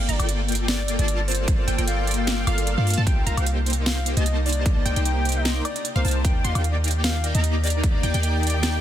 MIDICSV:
0, 0, Header, 1, 7, 480
1, 0, Start_track
1, 0, Key_signature, -2, "minor"
1, 0, Tempo, 397351
1, 1785, Time_signature, 4, 2, 24, 8
1, 10640, End_track
2, 0, Start_track
2, 0, Title_t, "Synth pluck"
2, 0, Program_c, 0, 84
2, 103, Note_on_c, 0, 82, 85
2, 203, Note_off_c, 0, 82, 0
2, 235, Note_on_c, 0, 79, 90
2, 1164, Note_off_c, 0, 79, 0
2, 1194, Note_on_c, 0, 81, 101
2, 1998, Note_off_c, 0, 81, 0
2, 2024, Note_on_c, 0, 79, 90
2, 2123, Note_off_c, 0, 79, 0
2, 2154, Note_on_c, 0, 79, 90
2, 2962, Note_off_c, 0, 79, 0
2, 2984, Note_on_c, 0, 77, 101
2, 3324, Note_off_c, 0, 77, 0
2, 3354, Note_on_c, 0, 77, 95
2, 3563, Note_off_c, 0, 77, 0
2, 3594, Note_on_c, 0, 81, 101
2, 3678, Note_off_c, 0, 81, 0
2, 3703, Note_on_c, 0, 79, 85
2, 3918, Note_off_c, 0, 79, 0
2, 3944, Note_on_c, 0, 82, 89
2, 4044, Note_off_c, 0, 82, 0
2, 4074, Note_on_c, 0, 79, 88
2, 5003, Note_off_c, 0, 79, 0
2, 5035, Note_on_c, 0, 81, 100
2, 5839, Note_off_c, 0, 81, 0
2, 5865, Note_on_c, 0, 79, 95
2, 5964, Note_off_c, 0, 79, 0
2, 5996, Note_on_c, 0, 79, 89
2, 6803, Note_off_c, 0, 79, 0
2, 7196, Note_on_c, 0, 77, 108
2, 7279, Note_off_c, 0, 77, 0
2, 7305, Note_on_c, 0, 81, 85
2, 7519, Note_off_c, 0, 81, 0
2, 7544, Note_on_c, 0, 79, 84
2, 7758, Note_off_c, 0, 79, 0
2, 7785, Note_on_c, 0, 84, 91
2, 7884, Note_off_c, 0, 84, 0
2, 7915, Note_on_c, 0, 79, 89
2, 8844, Note_off_c, 0, 79, 0
2, 8875, Note_on_c, 0, 82, 101
2, 9678, Note_off_c, 0, 82, 0
2, 9705, Note_on_c, 0, 79, 92
2, 9804, Note_off_c, 0, 79, 0
2, 9834, Note_on_c, 0, 79, 91
2, 10640, Note_off_c, 0, 79, 0
2, 10640, End_track
3, 0, Start_track
3, 0, Title_t, "Soft synth lead"
3, 0, Program_c, 1, 80
3, 0, Note_on_c, 1, 77, 104
3, 104, Note_on_c, 1, 74, 100
3, 122, Note_off_c, 1, 77, 0
3, 387, Note_off_c, 1, 74, 0
3, 825, Note_on_c, 1, 74, 89
3, 1108, Note_off_c, 1, 74, 0
3, 1196, Note_on_c, 1, 74, 104
3, 1472, Note_off_c, 1, 74, 0
3, 1546, Note_on_c, 1, 72, 95
3, 1829, Note_off_c, 1, 72, 0
3, 1915, Note_on_c, 1, 72, 95
3, 2191, Note_off_c, 1, 72, 0
3, 2265, Note_on_c, 1, 77, 98
3, 2548, Note_off_c, 1, 77, 0
3, 2635, Note_on_c, 1, 77, 96
3, 2911, Note_off_c, 1, 77, 0
3, 2984, Note_on_c, 1, 77, 100
3, 3268, Note_off_c, 1, 77, 0
3, 3357, Note_on_c, 1, 77, 102
3, 3632, Note_off_c, 1, 77, 0
3, 3706, Note_on_c, 1, 79, 98
3, 3897, Note_off_c, 1, 79, 0
3, 3946, Note_on_c, 1, 77, 100
3, 4228, Note_off_c, 1, 77, 0
3, 4666, Note_on_c, 1, 77, 93
3, 4949, Note_off_c, 1, 77, 0
3, 5036, Note_on_c, 1, 75, 97
3, 5312, Note_off_c, 1, 75, 0
3, 5385, Note_on_c, 1, 74, 101
3, 5668, Note_off_c, 1, 74, 0
3, 5755, Note_on_c, 1, 74, 91
3, 6031, Note_off_c, 1, 74, 0
3, 6107, Note_on_c, 1, 79, 96
3, 6476, Note_on_c, 1, 75, 96
3, 6494, Note_off_c, 1, 79, 0
3, 6752, Note_off_c, 1, 75, 0
3, 6826, Note_on_c, 1, 74, 101
3, 7108, Note_off_c, 1, 74, 0
3, 7196, Note_on_c, 1, 72, 96
3, 7472, Note_off_c, 1, 72, 0
3, 7546, Note_on_c, 1, 79, 98
3, 7787, Note_on_c, 1, 77, 100
3, 7805, Note_off_c, 1, 79, 0
3, 8069, Note_off_c, 1, 77, 0
3, 8506, Note_on_c, 1, 77, 96
3, 8788, Note_off_c, 1, 77, 0
3, 8875, Note_on_c, 1, 75, 101
3, 9152, Note_off_c, 1, 75, 0
3, 9226, Note_on_c, 1, 74, 101
3, 9509, Note_off_c, 1, 74, 0
3, 9597, Note_on_c, 1, 74, 93
3, 9872, Note_off_c, 1, 74, 0
3, 9947, Note_on_c, 1, 79, 96
3, 10229, Note_off_c, 1, 79, 0
3, 10316, Note_on_c, 1, 79, 93
3, 10592, Note_off_c, 1, 79, 0
3, 10640, End_track
4, 0, Start_track
4, 0, Title_t, "Analog polysynth"
4, 0, Program_c, 2, 90
4, 106, Note_on_c, 2, 58, 81
4, 106, Note_on_c, 2, 65, 72
4, 106, Note_on_c, 2, 69, 76
4, 106, Note_on_c, 2, 74, 76
4, 106, Note_on_c, 2, 82, 91
4, 205, Note_off_c, 2, 58, 0
4, 205, Note_off_c, 2, 65, 0
4, 205, Note_off_c, 2, 69, 0
4, 205, Note_off_c, 2, 74, 0
4, 205, Note_off_c, 2, 82, 0
4, 236, Note_on_c, 2, 58, 80
4, 236, Note_on_c, 2, 65, 77
4, 236, Note_on_c, 2, 69, 79
4, 236, Note_on_c, 2, 74, 76
4, 237, Note_on_c, 2, 79, 91
4, 1164, Note_off_c, 2, 69, 0
4, 1164, Note_off_c, 2, 74, 0
4, 1165, Note_off_c, 2, 58, 0
4, 1165, Note_off_c, 2, 65, 0
4, 1165, Note_off_c, 2, 79, 0
4, 1196, Note_on_c, 2, 58, 92
4, 1196, Note_on_c, 2, 65, 90
4, 1196, Note_on_c, 2, 69, 88
4, 1196, Note_on_c, 2, 74, 87
4, 1196, Note_on_c, 2, 81, 102
4, 1999, Note_off_c, 2, 58, 0
4, 1999, Note_off_c, 2, 65, 0
4, 1999, Note_off_c, 2, 69, 0
4, 1999, Note_off_c, 2, 74, 0
4, 1999, Note_off_c, 2, 81, 0
4, 2025, Note_on_c, 2, 79, 90
4, 2026, Note_on_c, 2, 58, 86
4, 2026, Note_on_c, 2, 65, 78
4, 2026, Note_on_c, 2, 69, 79
4, 2026, Note_on_c, 2, 74, 78
4, 2124, Note_off_c, 2, 65, 0
4, 2124, Note_off_c, 2, 79, 0
4, 2125, Note_off_c, 2, 58, 0
4, 2125, Note_off_c, 2, 69, 0
4, 2125, Note_off_c, 2, 74, 0
4, 2155, Note_on_c, 2, 58, 87
4, 2155, Note_on_c, 2, 65, 79
4, 2155, Note_on_c, 2, 69, 77
4, 2155, Note_on_c, 2, 74, 78
4, 2155, Note_on_c, 2, 79, 94
4, 2963, Note_off_c, 2, 58, 0
4, 2963, Note_off_c, 2, 65, 0
4, 2963, Note_off_c, 2, 69, 0
4, 2963, Note_off_c, 2, 74, 0
4, 2963, Note_off_c, 2, 79, 0
4, 2985, Note_on_c, 2, 58, 94
4, 2985, Note_on_c, 2, 65, 89
4, 2985, Note_on_c, 2, 69, 89
4, 2985, Note_on_c, 2, 77, 110
4, 2986, Note_on_c, 2, 74, 88
4, 3324, Note_off_c, 2, 58, 0
4, 3324, Note_off_c, 2, 65, 0
4, 3324, Note_off_c, 2, 69, 0
4, 3324, Note_off_c, 2, 74, 0
4, 3324, Note_off_c, 2, 77, 0
4, 3356, Note_on_c, 2, 58, 84
4, 3356, Note_on_c, 2, 65, 74
4, 3356, Note_on_c, 2, 69, 78
4, 3356, Note_on_c, 2, 74, 75
4, 3356, Note_on_c, 2, 77, 89
4, 3564, Note_off_c, 2, 58, 0
4, 3564, Note_off_c, 2, 65, 0
4, 3564, Note_off_c, 2, 69, 0
4, 3564, Note_off_c, 2, 74, 0
4, 3565, Note_off_c, 2, 77, 0
4, 3596, Note_on_c, 2, 58, 90
4, 3596, Note_on_c, 2, 65, 85
4, 3596, Note_on_c, 2, 69, 84
4, 3596, Note_on_c, 2, 74, 88
4, 3596, Note_on_c, 2, 81, 100
4, 3679, Note_off_c, 2, 58, 0
4, 3679, Note_off_c, 2, 65, 0
4, 3679, Note_off_c, 2, 69, 0
4, 3679, Note_off_c, 2, 74, 0
4, 3679, Note_off_c, 2, 81, 0
4, 3706, Note_on_c, 2, 58, 80
4, 3707, Note_on_c, 2, 63, 74
4, 3707, Note_on_c, 2, 67, 75
4, 3707, Note_on_c, 2, 72, 75
4, 3707, Note_on_c, 2, 79, 90
4, 3919, Note_off_c, 2, 58, 0
4, 3919, Note_off_c, 2, 72, 0
4, 3919, Note_off_c, 2, 79, 0
4, 3920, Note_off_c, 2, 63, 0
4, 3920, Note_off_c, 2, 67, 0
4, 3946, Note_on_c, 2, 58, 77
4, 3946, Note_on_c, 2, 63, 76
4, 3946, Note_on_c, 2, 67, 73
4, 3946, Note_on_c, 2, 72, 71
4, 3946, Note_on_c, 2, 82, 88
4, 4045, Note_off_c, 2, 58, 0
4, 4045, Note_off_c, 2, 63, 0
4, 4045, Note_off_c, 2, 67, 0
4, 4045, Note_off_c, 2, 72, 0
4, 4045, Note_off_c, 2, 82, 0
4, 4076, Note_on_c, 2, 58, 80
4, 4076, Note_on_c, 2, 63, 76
4, 4076, Note_on_c, 2, 67, 78
4, 4076, Note_on_c, 2, 72, 76
4, 4076, Note_on_c, 2, 79, 92
4, 5004, Note_off_c, 2, 67, 0
4, 5005, Note_off_c, 2, 58, 0
4, 5005, Note_off_c, 2, 63, 0
4, 5005, Note_off_c, 2, 72, 0
4, 5005, Note_off_c, 2, 79, 0
4, 5036, Note_on_c, 2, 58, 91
4, 5036, Note_on_c, 2, 63, 87
4, 5036, Note_on_c, 2, 67, 84
4, 5036, Note_on_c, 2, 72, 90
4, 5036, Note_on_c, 2, 81, 109
4, 5839, Note_off_c, 2, 58, 0
4, 5839, Note_off_c, 2, 63, 0
4, 5839, Note_off_c, 2, 67, 0
4, 5839, Note_off_c, 2, 72, 0
4, 5839, Note_off_c, 2, 81, 0
4, 5865, Note_on_c, 2, 58, 85
4, 5865, Note_on_c, 2, 63, 76
4, 5866, Note_on_c, 2, 67, 79
4, 5866, Note_on_c, 2, 72, 81
4, 5866, Note_on_c, 2, 79, 94
4, 5964, Note_off_c, 2, 58, 0
4, 5964, Note_off_c, 2, 63, 0
4, 5964, Note_off_c, 2, 67, 0
4, 5964, Note_off_c, 2, 72, 0
4, 5964, Note_off_c, 2, 79, 0
4, 5997, Note_on_c, 2, 58, 83
4, 5997, Note_on_c, 2, 63, 80
4, 5997, Note_on_c, 2, 67, 77
4, 5997, Note_on_c, 2, 72, 77
4, 5997, Note_on_c, 2, 79, 92
4, 6804, Note_off_c, 2, 58, 0
4, 6804, Note_off_c, 2, 63, 0
4, 6804, Note_off_c, 2, 67, 0
4, 6804, Note_off_c, 2, 72, 0
4, 6804, Note_off_c, 2, 79, 0
4, 7196, Note_on_c, 2, 58, 98
4, 7196, Note_on_c, 2, 63, 90
4, 7196, Note_on_c, 2, 67, 86
4, 7196, Note_on_c, 2, 72, 88
4, 7196, Note_on_c, 2, 77, 107
4, 7279, Note_off_c, 2, 58, 0
4, 7279, Note_off_c, 2, 63, 0
4, 7279, Note_off_c, 2, 67, 0
4, 7279, Note_off_c, 2, 72, 0
4, 7279, Note_off_c, 2, 77, 0
4, 7306, Note_on_c, 2, 63, 69
4, 7306, Note_on_c, 2, 72, 70
4, 7306, Note_on_c, 2, 81, 85
4, 7307, Note_on_c, 2, 58, 73
4, 7307, Note_on_c, 2, 67, 71
4, 7519, Note_off_c, 2, 63, 0
4, 7519, Note_off_c, 2, 72, 0
4, 7519, Note_off_c, 2, 81, 0
4, 7520, Note_off_c, 2, 58, 0
4, 7520, Note_off_c, 2, 67, 0
4, 7546, Note_on_c, 2, 58, 80
4, 7546, Note_on_c, 2, 63, 75
4, 7546, Note_on_c, 2, 67, 74
4, 7546, Note_on_c, 2, 74, 72
4, 7546, Note_on_c, 2, 79, 90
4, 7759, Note_off_c, 2, 58, 0
4, 7759, Note_off_c, 2, 63, 0
4, 7759, Note_off_c, 2, 67, 0
4, 7759, Note_off_c, 2, 74, 0
4, 7759, Note_off_c, 2, 79, 0
4, 7786, Note_on_c, 2, 58, 81
4, 7786, Note_on_c, 2, 63, 72
4, 7786, Note_on_c, 2, 67, 70
4, 7786, Note_on_c, 2, 74, 72
4, 7786, Note_on_c, 2, 84, 90
4, 7884, Note_off_c, 2, 58, 0
4, 7884, Note_off_c, 2, 74, 0
4, 7884, Note_off_c, 2, 84, 0
4, 7885, Note_off_c, 2, 63, 0
4, 7885, Note_off_c, 2, 67, 0
4, 7915, Note_on_c, 2, 67, 78
4, 7916, Note_on_c, 2, 58, 82
4, 7916, Note_on_c, 2, 63, 76
4, 7916, Note_on_c, 2, 74, 78
4, 7916, Note_on_c, 2, 79, 96
4, 8844, Note_off_c, 2, 58, 0
4, 8844, Note_off_c, 2, 63, 0
4, 8844, Note_off_c, 2, 67, 0
4, 8844, Note_off_c, 2, 74, 0
4, 8844, Note_off_c, 2, 79, 0
4, 8875, Note_on_c, 2, 58, 97
4, 8875, Note_on_c, 2, 63, 83
4, 8875, Note_on_c, 2, 67, 89
4, 8875, Note_on_c, 2, 74, 90
4, 8875, Note_on_c, 2, 82, 105
4, 9678, Note_off_c, 2, 58, 0
4, 9678, Note_off_c, 2, 67, 0
4, 9679, Note_off_c, 2, 63, 0
4, 9679, Note_off_c, 2, 74, 0
4, 9679, Note_off_c, 2, 82, 0
4, 9705, Note_on_c, 2, 58, 84
4, 9705, Note_on_c, 2, 74, 80
4, 9705, Note_on_c, 2, 79, 95
4, 9706, Note_on_c, 2, 63, 80
4, 9706, Note_on_c, 2, 67, 75
4, 9804, Note_off_c, 2, 58, 0
4, 9804, Note_off_c, 2, 63, 0
4, 9804, Note_off_c, 2, 67, 0
4, 9804, Note_off_c, 2, 74, 0
4, 9804, Note_off_c, 2, 79, 0
4, 9836, Note_on_c, 2, 58, 83
4, 9836, Note_on_c, 2, 63, 79
4, 9836, Note_on_c, 2, 67, 78
4, 9836, Note_on_c, 2, 74, 75
4, 9836, Note_on_c, 2, 79, 94
4, 10640, Note_off_c, 2, 58, 0
4, 10640, Note_off_c, 2, 63, 0
4, 10640, Note_off_c, 2, 67, 0
4, 10640, Note_off_c, 2, 74, 0
4, 10640, Note_off_c, 2, 79, 0
4, 10640, End_track
5, 0, Start_track
5, 0, Title_t, "Ambient pad"
5, 0, Program_c, 3, 92
5, 0, Note_on_c, 3, 55, 86
5, 0, Note_on_c, 3, 58, 93
5, 0, Note_on_c, 3, 65, 75
5, 0, Note_on_c, 3, 69, 76
5, 3667, Note_off_c, 3, 55, 0
5, 3667, Note_off_c, 3, 58, 0
5, 3667, Note_off_c, 3, 65, 0
5, 3667, Note_off_c, 3, 69, 0
5, 3706, Note_on_c, 3, 48, 80
5, 3706, Note_on_c, 3, 58, 75
5, 3706, Note_on_c, 3, 63, 89
5, 7507, Note_off_c, 3, 48, 0
5, 7507, Note_off_c, 3, 58, 0
5, 7507, Note_off_c, 3, 63, 0
5, 7546, Note_on_c, 3, 51, 82
5, 7546, Note_on_c, 3, 67, 96
5, 7546, Note_on_c, 3, 74, 76
5, 10640, Note_off_c, 3, 51, 0
5, 10640, Note_off_c, 3, 67, 0
5, 10640, Note_off_c, 3, 74, 0
5, 10640, End_track
6, 0, Start_track
6, 0, Title_t, "808-style bass"
6, 0, Program_c, 4, 38
6, 104, Note_on_c, 4, 31, 99
6, 209, Note_off_c, 4, 31, 0
6, 235, Note_on_c, 4, 31, 94
6, 1169, Note_off_c, 4, 31, 0
6, 1196, Note_on_c, 4, 31, 101
6, 2003, Note_off_c, 4, 31, 0
6, 2025, Note_on_c, 4, 31, 98
6, 2129, Note_off_c, 4, 31, 0
6, 2155, Note_on_c, 4, 31, 95
6, 2963, Note_off_c, 4, 31, 0
6, 2984, Note_on_c, 4, 31, 100
6, 3329, Note_off_c, 4, 31, 0
6, 3355, Note_on_c, 4, 43, 102
6, 3569, Note_off_c, 4, 43, 0
6, 3595, Note_on_c, 4, 43, 97
6, 3705, Note_on_c, 4, 36, 100
6, 3723, Note_off_c, 4, 43, 0
6, 3923, Note_off_c, 4, 36, 0
6, 3946, Note_on_c, 4, 36, 95
6, 4050, Note_off_c, 4, 36, 0
6, 4076, Note_on_c, 4, 36, 98
6, 5010, Note_off_c, 4, 36, 0
6, 5036, Note_on_c, 4, 36, 102
6, 5843, Note_off_c, 4, 36, 0
6, 5866, Note_on_c, 4, 36, 96
6, 5970, Note_off_c, 4, 36, 0
6, 5996, Note_on_c, 4, 36, 96
6, 6782, Note_off_c, 4, 36, 0
6, 7196, Note_on_c, 4, 36, 98
6, 7283, Note_off_c, 4, 36, 0
6, 7305, Note_on_c, 4, 36, 97
6, 7545, Note_on_c, 4, 39, 96
6, 7563, Note_off_c, 4, 36, 0
6, 7763, Note_off_c, 4, 39, 0
6, 7785, Note_on_c, 4, 39, 95
6, 7889, Note_off_c, 4, 39, 0
6, 7916, Note_on_c, 4, 39, 100
6, 8849, Note_off_c, 4, 39, 0
6, 8876, Note_on_c, 4, 39, 96
6, 9683, Note_off_c, 4, 39, 0
6, 9705, Note_on_c, 4, 39, 96
6, 9809, Note_off_c, 4, 39, 0
6, 9835, Note_on_c, 4, 39, 96
6, 10640, Note_off_c, 4, 39, 0
6, 10640, End_track
7, 0, Start_track
7, 0, Title_t, "Drums"
7, 106, Note_on_c, 9, 42, 66
7, 227, Note_off_c, 9, 42, 0
7, 236, Note_on_c, 9, 42, 73
7, 236, Note_on_c, 9, 76, 64
7, 346, Note_off_c, 9, 42, 0
7, 346, Note_on_c, 9, 42, 84
7, 357, Note_off_c, 9, 76, 0
7, 467, Note_off_c, 9, 42, 0
7, 586, Note_on_c, 9, 42, 51
7, 629, Note_off_c, 9, 42, 0
7, 629, Note_on_c, 9, 42, 65
7, 665, Note_off_c, 9, 42, 0
7, 665, Note_on_c, 9, 42, 86
7, 786, Note_off_c, 9, 42, 0
7, 826, Note_on_c, 9, 38, 119
7, 826, Note_on_c, 9, 42, 82
7, 946, Note_off_c, 9, 38, 0
7, 946, Note_off_c, 9, 42, 0
7, 1066, Note_on_c, 9, 42, 71
7, 1186, Note_off_c, 9, 42, 0
7, 1196, Note_on_c, 9, 42, 71
7, 1306, Note_off_c, 9, 42, 0
7, 1306, Note_on_c, 9, 42, 84
7, 1427, Note_off_c, 9, 42, 0
7, 1546, Note_on_c, 9, 46, 65
7, 1590, Note_on_c, 9, 42, 71
7, 1626, Note_off_c, 9, 42, 0
7, 1626, Note_on_c, 9, 42, 88
7, 1667, Note_off_c, 9, 46, 0
7, 1747, Note_off_c, 9, 42, 0
7, 1785, Note_on_c, 9, 36, 122
7, 1786, Note_on_c, 9, 42, 89
7, 1905, Note_off_c, 9, 36, 0
7, 1907, Note_off_c, 9, 42, 0
7, 2026, Note_on_c, 9, 42, 70
7, 2147, Note_off_c, 9, 42, 0
7, 2156, Note_on_c, 9, 42, 71
7, 2265, Note_off_c, 9, 42, 0
7, 2265, Note_on_c, 9, 42, 86
7, 2386, Note_off_c, 9, 42, 0
7, 2505, Note_on_c, 9, 42, 53
7, 2549, Note_off_c, 9, 42, 0
7, 2549, Note_on_c, 9, 42, 68
7, 2585, Note_off_c, 9, 42, 0
7, 2585, Note_on_c, 9, 42, 83
7, 2706, Note_off_c, 9, 42, 0
7, 2745, Note_on_c, 9, 38, 125
7, 2745, Note_on_c, 9, 42, 79
7, 2866, Note_off_c, 9, 38, 0
7, 2866, Note_off_c, 9, 42, 0
7, 2985, Note_on_c, 9, 42, 74
7, 2985, Note_on_c, 9, 76, 62
7, 3106, Note_off_c, 9, 42, 0
7, 3106, Note_off_c, 9, 76, 0
7, 3115, Note_on_c, 9, 42, 70
7, 3225, Note_off_c, 9, 42, 0
7, 3225, Note_on_c, 9, 42, 82
7, 3346, Note_off_c, 9, 42, 0
7, 3465, Note_on_c, 9, 46, 64
7, 3509, Note_on_c, 9, 42, 68
7, 3545, Note_off_c, 9, 42, 0
7, 3545, Note_on_c, 9, 42, 88
7, 3586, Note_off_c, 9, 46, 0
7, 3666, Note_off_c, 9, 42, 0
7, 3705, Note_on_c, 9, 36, 124
7, 3705, Note_on_c, 9, 42, 85
7, 3826, Note_off_c, 9, 36, 0
7, 3826, Note_off_c, 9, 42, 0
7, 3946, Note_on_c, 9, 42, 66
7, 4066, Note_off_c, 9, 42, 0
7, 4077, Note_on_c, 9, 42, 70
7, 4077, Note_on_c, 9, 76, 59
7, 4186, Note_off_c, 9, 42, 0
7, 4186, Note_on_c, 9, 42, 87
7, 4197, Note_off_c, 9, 76, 0
7, 4306, Note_off_c, 9, 42, 0
7, 4426, Note_on_c, 9, 42, 50
7, 4469, Note_off_c, 9, 42, 0
7, 4469, Note_on_c, 9, 42, 66
7, 4505, Note_off_c, 9, 42, 0
7, 4505, Note_on_c, 9, 42, 81
7, 4626, Note_off_c, 9, 42, 0
7, 4665, Note_on_c, 9, 38, 127
7, 4665, Note_on_c, 9, 42, 80
7, 4786, Note_off_c, 9, 38, 0
7, 4786, Note_off_c, 9, 42, 0
7, 4906, Note_on_c, 9, 42, 70
7, 5027, Note_off_c, 9, 42, 0
7, 5036, Note_on_c, 9, 42, 71
7, 5146, Note_off_c, 9, 42, 0
7, 5146, Note_on_c, 9, 42, 81
7, 5266, Note_off_c, 9, 42, 0
7, 5386, Note_on_c, 9, 46, 62
7, 5429, Note_on_c, 9, 42, 65
7, 5466, Note_off_c, 9, 42, 0
7, 5466, Note_on_c, 9, 42, 81
7, 5507, Note_off_c, 9, 46, 0
7, 5587, Note_off_c, 9, 42, 0
7, 5625, Note_on_c, 9, 36, 123
7, 5626, Note_on_c, 9, 42, 79
7, 5746, Note_off_c, 9, 36, 0
7, 5747, Note_off_c, 9, 42, 0
7, 5866, Note_on_c, 9, 42, 63
7, 5987, Note_off_c, 9, 42, 0
7, 5996, Note_on_c, 9, 42, 67
7, 6106, Note_off_c, 9, 42, 0
7, 6106, Note_on_c, 9, 42, 79
7, 6227, Note_off_c, 9, 42, 0
7, 6346, Note_on_c, 9, 42, 47
7, 6389, Note_off_c, 9, 42, 0
7, 6389, Note_on_c, 9, 42, 65
7, 6425, Note_off_c, 9, 42, 0
7, 6425, Note_on_c, 9, 42, 79
7, 6546, Note_off_c, 9, 42, 0
7, 6585, Note_on_c, 9, 38, 122
7, 6585, Note_on_c, 9, 42, 77
7, 6706, Note_off_c, 9, 38, 0
7, 6706, Note_off_c, 9, 42, 0
7, 6825, Note_on_c, 9, 42, 69
7, 6825, Note_on_c, 9, 76, 61
7, 6946, Note_off_c, 9, 42, 0
7, 6946, Note_off_c, 9, 76, 0
7, 6956, Note_on_c, 9, 42, 67
7, 7065, Note_off_c, 9, 42, 0
7, 7065, Note_on_c, 9, 42, 78
7, 7186, Note_off_c, 9, 42, 0
7, 7305, Note_on_c, 9, 46, 61
7, 7348, Note_on_c, 9, 42, 67
7, 7384, Note_off_c, 9, 42, 0
7, 7384, Note_on_c, 9, 42, 84
7, 7425, Note_off_c, 9, 46, 0
7, 7505, Note_off_c, 9, 42, 0
7, 7545, Note_on_c, 9, 36, 115
7, 7545, Note_on_c, 9, 42, 82
7, 7666, Note_off_c, 9, 36, 0
7, 7666, Note_off_c, 9, 42, 0
7, 7785, Note_on_c, 9, 42, 62
7, 7906, Note_off_c, 9, 42, 0
7, 7916, Note_on_c, 9, 42, 66
7, 7916, Note_on_c, 9, 76, 64
7, 8025, Note_off_c, 9, 42, 0
7, 8025, Note_on_c, 9, 42, 77
7, 8036, Note_off_c, 9, 76, 0
7, 8146, Note_off_c, 9, 42, 0
7, 8265, Note_on_c, 9, 42, 48
7, 8308, Note_off_c, 9, 42, 0
7, 8308, Note_on_c, 9, 42, 63
7, 8344, Note_off_c, 9, 42, 0
7, 8344, Note_on_c, 9, 42, 78
7, 8465, Note_off_c, 9, 42, 0
7, 8505, Note_on_c, 9, 38, 116
7, 8505, Note_on_c, 9, 42, 76
7, 8625, Note_off_c, 9, 38, 0
7, 8625, Note_off_c, 9, 42, 0
7, 8745, Note_on_c, 9, 42, 64
7, 8866, Note_off_c, 9, 42, 0
7, 8875, Note_on_c, 9, 42, 66
7, 8984, Note_off_c, 9, 42, 0
7, 8984, Note_on_c, 9, 42, 76
7, 9105, Note_off_c, 9, 42, 0
7, 9225, Note_on_c, 9, 46, 59
7, 9268, Note_on_c, 9, 42, 64
7, 9304, Note_off_c, 9, 42, 0
7, 9304, Note_on_c, 9, 42, 77
7, 9346, Note_off_c, 9, 46, 0
7, 9425, Note_off_c, 9, 42, 0
7, 9465, Note_on_c, 9, 36, 112
7, 9465, Note_on_c, 9, 42, 78
7, 9586, Note_off_c, 9, 36, 0
7, 9586, Note_off_c, 9, 42, 0
7, 9705, Note_on_c, 9, 42, 60
7, 9825, Note_off_c, 9, 42, 0
7, 9835, Note_on_c, 9, 42, 65
7, 9945, Note_off_c, 9, 42, 0
7, 9945, Note_on_c, 9, 42, 78
7, 10066, Note_off_c, 9, 42, 0
7, 10185, Note_on_c, 9, 42, 47
7, 10229, Note_off_c, 9, 42, 0
7, 10229, Note_on_c, 9, 42, 62
7, 10265, Note_off_c, 9, 42, 0
7, 10265, Note_on_c, 9, 42, 81
7, 10386, Note_off_c, 9, 42, 0
7, 10425, Note_on_c, 9, 38, 109
7, 10425, Note_on_c, 9, 42, 75
7, 10546, Note_off_c, 9, 38, 0
7, 10546, Note_off_c, 9, 42, 0
7, 10640, End_track
0, 0, End_of_file